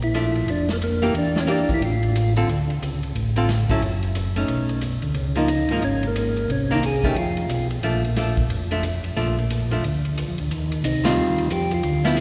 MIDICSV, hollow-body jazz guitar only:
0, 0, Header, 1, 2, 480
1, 0, Start_track
1, 0, Key_signature, -2, "major"
1, 0, Tempo, 334076
1, 1645, Time_signature, 4, 2, 24, 8
1, 17536, End_track
2, 0, Start_track
2, 0, Title_t, "Hollow-body jazz guitar"
2, 0, Program_c, 0, 26
2, 202, Note_on_c, 0, 53, 47
2, 220, Note_on_c, 0, 57, 50
2, 232, Note_on_c, 0, 62, 54
2, 923, Note_off_c, 0, 53, 0
2, 932, Note_off_c, 0, 57, 0
2, 938, Note_off_c, 0, 62, 0
2, 1466, Note_on_c, 0, 52, 60
2, 1468, Note_on_c, 0, 58, 62
2, 1483, Note_on_c, 0, 67, 67
2, 1484, Note_on_c, 0, 62, 67
2, 1628, Note_off_c, 0, 52, 0
2, 1629, Note_off_c, 0, 58, 0
2, 1636, Note_off_c, 0, 67, 0
2, 1637, Note_off_c, 0, 62, 0
2, 2109, Note_on_c, 0, 52, 50
2, 2111, Note_on_c, 0, 58, 50
2, 2115, Note_on_c, 0, 62, 53
2, 2132, Note_on_c, 0, 67, 56
2, 2598, Note_off_c, 0, 52, 0
2, 2598, Note_off_c, 0, 58, 0
2, 2600, Note_off_c, 0, 62, 0
2, 2609, Note_off_c, 0, 67, 0
2, 3401, Note_on_c, 0, 50, 48
2, 3404, Note_on_c, 0, 60, 55
2, 3408, Note_on_c, 0, 65, 52
2, 3410, Note_on_c, 0, 69, 64
2, 3556, Note_off_c, 0, 50, 0
2, 3557, Note_off_c, 0, 60, 0
2, 3559, Note_off_c, 0, 65, 0
2, 3560, Note_off_c, 0, 69, 0
2, 4830, Note_on_c, 0, 50, 54
2, 4844, Note_on_c, 0, 60, 58
2, 4848, Note_on_c, 0, 69, 59
2, 4850, Note_on_c, 0, 65, 63
2, 4990, Note_off_c, 0, 50, 0
2, 4997, Note_off_c, 0, 60, 0
2, 5000, Note_off_c, 0, 65, 0
2, 5000, Note_off_c, 0, 69, 0
2, 5311, Note_on_c, 0, 54, 50
2, 5326, Note_on_c, 0, 61, 54
2, 5331, Note_on_c, 0, 64, 58
2, 5332, Note_on_c, 0, 69, 56
2, 5471, Note_off_c, 0, 54, 0
2, 5479, Note_off_c, 0, 61, 0
2, 5481, Note_off_c, 0, 64, 0
2, 5481, Note_off_c, 0, 69, 0
2, 6265, Note_on_c, 0, 57, 52
2, 6283, Note_on_c, 0, 61, 53
2, 6290, Note_on_c, 0, 63, 53
2, 6891, Note_off_c, 0, 57, 0
2, 6900, Note_off_c, 0, 61, 0
2, 6903, Note_off_c, 0, 63, 0
2, 7700, Note_on_c, 0, 53, 65
2, 7711, Note_on_c, 0, 63, 64
2, 7716, Note_on_c, 0, 58, 64
2, 7866, Note_off_c, 0, 53, 0
2, 7872, Note_off_c, 0, 63, 0
2, 7874, Note_off_c, 0, 58, 0
2, 8203, Note_on_c, 0, 53, 58
2, 8215, Note_on_c, 0, 58, 61
2, 8223, Note_on_c, 0, 63, 63
2, 8358, Note_off_c, 0, 53, 0
2, 8364, Note_off_c, 0, 58, 0
2, 8368, Note_off_c, 0, 63, 0
2, 9637, Note_on_c, 0, 51, 62
2, 9645, Note_on_c, 0, 58, 67
2, 9657, Note_on_c, 0, 62, 73
2, 9795, Note_off_c, 0, 51, 0
2, 9799, Note_off_c, 0, 58, 0
2, 9805, Note_off_c, 0, 62, 0
2, 10116, Note_on_c, 0, 57, 58
2, 10121, Note_on_c, 0, 51, 54
2, 10133, Note_on_c, 0, 61, 61
2, 10275, Note_off_c, 0, 57, 0
2, 10277, Note_off_c, 0, 51, 0
2, 10284, Note_off_c, 0, 61, 0
2, 11256, Note_on_c, 0, 53, 50
2, 11262, Note_on_c, 0, 57, 51
2, 11274, Note_on_c, 0, 62, 50
2, 11523, Note_off_c, 0, 53, 0
2, 11526, Note_off_c, 0, 57, 0
2, 11532, Note_off_c, 0, 62, 0
2, 11736, Note_on_c, 0, 53, 44
2, 11745, Note_on_c, 0, 57, 46
2, 11752, Note_on_c, 0, 62, 49
2, 12003, Note_off_c, 0, 53, 0
2, 12007, Note_off_c, 0, 57, 0
2, 12011, Note_off_c, 0, 62, 0
2, 12517, Note_on_c, 0, 53, 57
2, 12524, Note_on_c, 0, 57, 65
2, 12525, Note_on_c, 0, 62, 68
2, 12676, Note_off_c, 0, 53, 0
2, 12680, Note_off_c, 0, 57, 0
2, 12680, Note_off_c, 0, 62, 0
2, 13169, Note_on_c, 0, 57, 61
2, 13170, Note_on_c, 0, 53, 55
2, 13178, Note_on_c, 0, 62, 59
2, 13440, Note_off_c, 0, 53, 0
2, 13440, Note_off_c, 0, 57, 0
2, 13444, Note_off_c, 0, 62, 0
2, 13955, Note_on_c, 0, 53, 52
2, 13969, Note_on_c, 0, 57, 50
2, 13976, Note_on_c, 0, 62, 57
2, 14115, Note_off_c, 0, 53, 0
2, 14122, Note_off_c, 0, 57, 0
2, 14126, Note_off_c, 0, 62, 0
2, 15856, Note_on_c, 0, 51, 60
2, 15869, Note_on_c, 0, 55, 55
2, 15873, Note_on_c, 0, 65, 66
2, 15874, Note_on_c, 0, 60, 63
2, 16486, Note_off_c, 0, 51, 0
2, 16493, Note_off_c, 0, 55, 0
2, 16495, Note_off_c, 0, 60, 0
2, 16495, Note_off_c, 0, 65, 0
2, 17306, Note_on_c, 0, 53, 63
2, 17312, Note_on_c, 0, 59, 70
2, 17316, Note_on_c, 0, 64, 69
2, 17468, Note_off_c, 0, 53, 0
2, 17471, Note_off_c, 0, 59, 0
2, 17474, Note_off_c, 0, 64, 0
2, 17536, End_track
0, 0, End_of_file